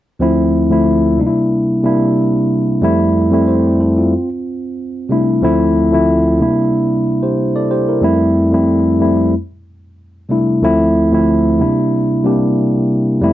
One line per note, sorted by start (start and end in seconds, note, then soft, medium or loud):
0.19 0.52 D2 medium
0.19 0.53 F3 medium
0.19 0.53 A3 medium
0.19 0.53 C4 medium
0.19 0.54 E4 medium
0.70 1.03 D2 medium
0.70 1.03 F3 medium
0.70 1.03 A3 medium
0.70 1.04 C4 medium
0.70 1.04 E4 medium
1.18 1.71 C3 medium
1.18 1.72 G3 medium
1.18 1.72 A#3 medium
1.18 1.72 D4 medium
1.18 1.26 D#4 medium
1.27 1.76 E4 medium
1.84 2.48 C3 medium
1.84 2.49 G3 medium
1.84 2.49 A#3 medium
1.84 2.49 D4 medium
1.84 2.50 E4 medium
2.81 3.14 F2 medium
2.81 3.14 G3 medium
2.81 3.15 A3 medium
2.81 3.15 C4 medium
2.81 3.15 E4 medium
3.31 3.64 F2 medium
3.31 3.64 G3 medium
3.31 3.65 A3 medium
3.31 3.48 C4 medium
3.31 3.48 E4 medium
3.48 3.79 G4 soft
3.48 3.78 C5 medium
3.80 3.97 E4 soft
3.80 3.97 A4 medium
3.98 4.29 C4 soft
3.98 4.29 F4 soft
5.09 5.32 C3 medium
5.09 5.32 G3 medium
5.09 5.33 A3 medium
5.09 5.33 D4 medium
5.09 5.33 E4 medium
5.41 5.74 D2 medium
5.41 5.75 F3 medium
5.41 5.75 A3 medium
5.41 5.75 C4 medium
5.41 5.76 E4 medium
5.92 6.24 D2 medium
5.92 6.25 F3 medium
5.92 6.25 A3 medium
5.92 6.26 C4 medium
5.92 6.26 E4 medium
6.39 6.93 C3 medium
6.39 6.93 G3 medium
6.39 6.94 A#3 medium
6.39 6.94 D4 medium
6.39 6.94 E4 medium
7.23 7.54 G4 soft
7.23 7.54 C5 medium
7.56 7.70 A4 medium
7.56 7.70 D5 medium
7.71 7.88 G4 soft
7.71 7.87 C5 medium
7.88 8.03 E4 soft
7.88 8.19 A#4 medium
8.01 8.34 F2 medium
8.01 8.35 G3 medium
8.01 8.35 A3 medium
8.01 8.35 C4 medium
8.01 8.36 E4 loud
8.51 8.84 F2 medium
8.51 8.85 G3 medium
8.51 8.85 A3 medium
8.51 8.86 C4 medium
8.51 8.86 E4 medium
8.99 9.32 F2 medium
8.99 9.33 G3 medium
8.99 9.33 A3 medium
8.99 9.33 C4 medium
8.99 9.34 E4 medium
10.29 10.52 C3 medium
10.29 10.52 G3 medium
10.29 10.53 A3 medium
10.29 10.53 D4 medium
10.29 10.53 E4 medium
10.62 10.95 D2 medium
10.62 10.95 F3 medium
10.62 10.95 A3 medium
10.62 10.96 C4 medium
10.62 10.96 E4 loud
11.12 11.44 D2 medium
11.12 11.45 F3 medium
11.12 11.45 A3 medium
11.12 11.46 C4 medium
11.12 11.46 E4 medium
11.59 12.13 C3 medium
11.59 12.13 G3 medium
11.59 12.13 A#3 medium
11.59 12.14 D4 medium
11.59 12.14 E4 medium
12.24 12.89 C3 medium
12.24 12.89 G3 medium
12.24 12.90 A#3 medium
12.24 12.90 D4 medium
12.24 12.90 G4 medium
13.21 13.33 F2 medium
13.21 13.33 G3 medium
13.21 13.33 A3 medium
13.21 13.33 C4 medium
13.21 13.33 E4 medium